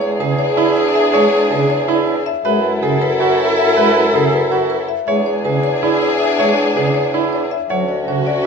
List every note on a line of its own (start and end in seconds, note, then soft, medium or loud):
0.00 2.33 E2 medium
0.00 2.23 D4 medium
0.00 2.22 G#4 medium
0.00 2.23 G#4 medium
0.00 0.26 C#5 medium
0.20 0.34 C#3 medium
0.20 0.45 G#4 medium
0.20 0.45 B4 medium
0.39 0.63 C#5 medium
0.57 0.82 E4 medium
0.57 0.82 D5 medium
0.76 1.01 C#5 medium
0.95 1.13 E5 medium
1.13 1.28 G#3 medium
1.13 1.38 C#5 medium
1.13 1.38 E5 medium
1.33 1.57 C#5 medium
1.51 1.65 C#3 medium
1.51 1.76 G#4 medium
1.51 1.76 B4 medium
1.70 1.94 C#5 medium
1.88 2.13 E4 medium
1.88 2.13 D5 medium
2.08 2.32 C#5 medium
2.26 2.44 E5 medium
2.45 4.96 F#2 medium
2.45 2.59 G#3 medium
2.45 4.85 E4 medium
2.45 4.85 A4 medium
2.45 2.69 B4 medium
2.45 2.69 E5 medium
2.64 2.88 B4 medium
2.83 2.97 C#3 medium
2.83 3.07 G#4 medium
2.83 3.07 A4 medium
3.02 3.26 B4 medium
3.20 3.44 F#4 medium
3.20 3.44 C#5 medium
3.39 3.63 B4 medium
3.58 3.75 E5 medium
3.76 3.91 G#3 medium
3.76 4.01 B4 medium
3.76 4.01 E5 medium
3.94 4.19 B4 medium
4.14 4.28 C#3 medium
4.14 4.38 G#4 medium
4.14 4.38 A4 medium
4.33 4.57 B4 medium
4.51 4.76 F#4 medium
4.51 4.76 C#5 medium
4.70 4.94 B4 medium
4.89 5.06 E5 medium
5.07 7.59 E2 medium
5.07 5.22 G#3 medium
5.07 7.47 D4 medium
5.07 7.47 G#4 medium
5.07 5.32 C#5 medium
5.07 5.32 E5 medium
5.26 5.51 C#5 medium
5.45 5.59 C#3 medium
5.45 5.70 G#4 medium
5.45 5.69 B4 medium
5.64 5.88 C#5 medium
5.82 6.07 E4 medium
5.82 6.07 D5 medium
6.01 6.26 C#5 medium
6.19 6.37 E5 medium
6.39 6.53 G#3 medium
6.39 6.63 C#5 medium
6.39 6.63 E5 medium
6.58 6.82 C#5 medium
6.76 6.90 C#3 medium
6.76 7.01 G#4 medium
6.76 7.01 B4 medium
6.94 7.19 C#5 medium
7.14 7.38 E4 medium
7.14 7.38 D5 medium
7.33 7.57 C#5 medium
7.51 7.76 E5 medium
7.70 8.46 D2 medium
7.70 7.84 F#3 medium
7.70 8.46 C#4 medium
7.70 8.46 F#4 medium
7.70 7.95 C#5 medium
7.70 7.94 F#5 medium
7.89 8.13 D5 medium
8.08 8.22 C#3 medium
8.08 8.32 F#4 medium
8.08 8.32 C#5 medium
8.27 8.46 D5 medium